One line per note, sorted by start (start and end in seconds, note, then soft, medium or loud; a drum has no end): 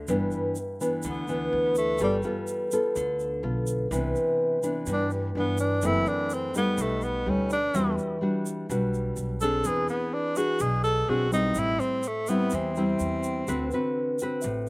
0.08 0.30 G1 loud
0.08 1.02 G2 medium
0.08 0.56 E3 medium
0.08 0.56 B3 medium
0.08 0.56 D4 medium
0.08 shaker medium
0.31 shaker soft
0.55 shaker medium
0.81 1.24 E3 medium
0.81 1.24 B3 medium
0.81 1.25 D4 medium
0.81 shaker medium
1.03 1.49 D2 medium
1.03 1.98 D3 medium
1.03 shaker medium
1.09 1.74 B3 medium
1.28 1.98 E3 medium
1.28 1.98 B3 medium
1.28 1.99 D4 medium
1.28 shaker soft
1.53 1.97 D2 medium
1.75 1.99 A3 medium
1.75 shaker medium
1.98 2.22 G1 medium
1.98 2.94 G3 medium
1.98 2.20 B3 medium
1.98 2.20 F4 medium
1.98 2.21 A4 medium
1.98 shaker medium
2.03 2.17 G3 medium
2.23 2.68 B3 medium
2.23 2.68 F4 medium
2.23 2.68 A4 medium
2.23 shaker soft
2.47 shaker medium
2.71 3.40 B3 medium
2.71 3.40 F4 medium
2.71 3.40 A4 medium
2.71 shaker medium
2.95 3.40 D2 medium
2.95 3.89 D3 medium
2.95 shaker medium
3.20 shaker soft
3.43 3.88 B1 medium
3.43 3.87 B3 medium
3.43 3.87 F4 medium
3.43 3.87 A4 medium
3.67 shaker medium
3.91 4.13 C2 loud
3.91 4.84 C3 medium
3.91 4.59 E3 medium
3.91 4.59 B3 medium
3.91 4.60 D4 medium
3.91 shaker medium
4.16 shaker soft
4.63 5.31 E3 medium
4.63 5.31 B3 medium
4.63 5.31 D4 medium
4.63 shaker medium
4.86 5.31 G2 medium
4.86 5.81 G2 medium
4.86 shaker medium
4.93 5.12 D4 medium
5.10 5.29 G3 soft
5.10 shaker soft
5.35 5.79 G2 medium
5.35 5.79 E3 medium
5.35 5.79 B3 medium
5.35 5.60 B3 medium
5.35 5.80 D4 medium
5.58 5.88 D4 medium
5.58 shaker medium
5.82 6.05 F#1 loud
5.82 6.76 F#2 medium
5.82 6.51 E3 medium
5.82 6.51 A3 medium
5.82 6.51 C4 medium
5.82 shaker medium
5.86 6.10 E4 loud
6.06 6.35 D4 medium
6.06 shaker soft
6.30 6.56 C4 medium
6.30 shaker medium
6.55 7.22 G3 medium
6.55 7.22 A3 medium
6.55 6.83 B3 medium
6.55 7.23 D#4 medium
6.55 shaker medium
6.77 7.22 B1 medium
6.77 7.71 B2 medium
6.77 shaker medium
6.82 7.05 A3 medium
7.02 7.31 B3 medium
7.02 shaker soft
7.26 7.71 D2 medium
7.26 7.57 G3 medium
7.26 7.57 A3 medium
7.26 7.52 C#4 medium
7.26 7.58 D#4 medium
7.50 7.96 D4 loud
7.50 shaker medium
7.74 7.96 E2 loud
7.74 8.67 E3 medium
7.74 8.18 G3 medium
7.74 8.18 D4 medium
7.74 8.18 F#4 medium
7.74 shaker medium
7.98 shaker soft
8.21 8.65 G3 medium
8.21 8.66 D4 medium
8.21 8.66 F#4 medium
8.46 shaker medium
8.70 9.14 B1 medium
8.70 9.63 B2 medium
8.70 9.38 G3 medium
8.70 9.38 D4 medium
8.70 9.38 F#4 medium
8.70 shaker medium
8.94 shaker soft
9.16 9.61 B1 medium
9.16 shaker medium
9.41 10.33 C4 medium
9.41 10.34 D4 medium
9.41 10.34 G#4 medium
9.41 9.68 A4 medium
9.41 shaker medium
9.64 9.87 E2 loud
9.64 10.59 E3 medium
9.64 9.89 G#4 medium
9.64 shaker medium
9.88 10.15 B3 medium
9.88 shaker soft
10.14 10.38 D4 medium
10.36 11.05 D4 medium
10.36 10.63 F#4 medium
10.36 11.05 G#4 medium
10.36 shaker medium
10.59 11.05 B1 medium
10.59 11.54 B2 medium
10.59 10.83 G#4 medium
10.59 shaker medium
10.84 11.11 A4 medium
10.84 shaker soft
11.08 11.53 B1 medium
11.08 11.29 C4 medium
11.08 11.29 D4 medium
11.08 11.33 F#4 medium
11.08 11.29 G#4 medium
11.31 12.00 G3 medium
11.31 12.00 C4 medium
11.31 11.61 D#4 loud
11.31 12.00 E4 medium
11.31 shaker medium
11.55 11.78 A1 loud
11.55 12.50 A2 medium
11.55 shaker medium
11.59 11.82 E4 loud
11.80 12.09 C4 medium
11.80 shaker soft
12.03 shaker medium
12.07 12.30 A3 medium
12.27 12.73 G3 medium
12.27 12.56 B3 medium
12.27 12.73 C4 medium
12.27 12.73 E4 medium
12.27 shaker medium
12.50 12.97 E2 loud
12.50 13.46 E3 medium
12.50 shaker medium
12.55 13.97 C4 medium
12.76 13.46 G3 medium
12.76 13.46 C4 medium
12.76 13.47 E4 medium
12.76 shaker soft
12.99 13.45 E2 medium
12.99 shaker medium
13.23 shaker medium
13.47 13.70 D2 loud
13.47 14.41 D3 medium
13.47 13.68 C4 medium
13.47 13.68 F#4 medium
13.47 13.68 B4 medium
13.47 shaker medium
13.71 14.17 C4 medium
13.71 14.17 F#4 medium
13.71 14.17 B4 medium
13.71 shaker soft
14.19 14.69 C4 medium
14.19 14.69 F#4 medium
14.19 shaker medium
14.23 14.69 B4 medium
14.42 14.69 A1 loud
14.42 14.69 A2 medium
14.42 shaker medium